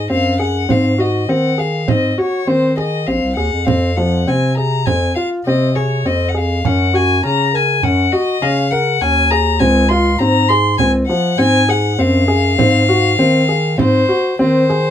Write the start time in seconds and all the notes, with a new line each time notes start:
0.10 F#2 C4 F5
0.39 G#4 F#5, frame drum
0.69 G#2 C4 F5, frame drum
0.98 F#4 D#5, frame drum
1.28 D#3 C4 F#5
1.58 G#4 F5
1.88 G#2 C4 D#5, frame drum
2.11 D#5
2.18 F#4 C#5, frame drum
2.47 D#3 C4 C5
2.77 G#4 D#5, frame drum
3.07 A#1 C4 F5, frame drum
3.22 C2
3.36 D#2 G#4 F#5
3.52 F2
3.64 F2 C4 F5, frame drum
3.96 F3 F#5
4.27 C3 C4 G#5
4.57 G#4 A#5
4.86 F2 C4 G#5, frame drum
5.15 F4 F5, frame drum
5.46 C3 C4 D#5
5.75 G#4 C#5, frame drum
6.05 F2 C4 D#5
6.28 F#5
6.35 G#4 F5, frame drum
6.65 F#2 C#4 F#5, frame drum
6.94 F#4 G#5
7.24 C#3 C#4 A#5
7.53 A#4 G#5
7.83 F#2 C#4 F#5, frame drum
8.12 F#4 D#5, frame drum
8.42 C#3 C#4 F5
8.71 A#4 F#5, frame drum
9.01 D#2 C#4 G#5
9.30 G#4 A#5
9.60 C#2 C4 G#5, frame drum
9.89 F4 C6
10.19 G#2 C4 A#5
10.48 G#4 C6
10.78 C#2 C4 G#5, frame drum
11.07 F3 F#5, frame drum
11.38 G#2 C4 G#5
11.69 G#4 F#5
11.99 F#2 C4 F5
12.28 G#4, frame drum
12.58 G#2 C4, frame drum
12.89 F#4, frame drum
13.19 D#3 C4
13.49 G#4
13.78 G#2 C4 C5, frame drum
14.09 F#4, frame drum
14.39 D#3 C4 C5
14.70 G#4, frame drum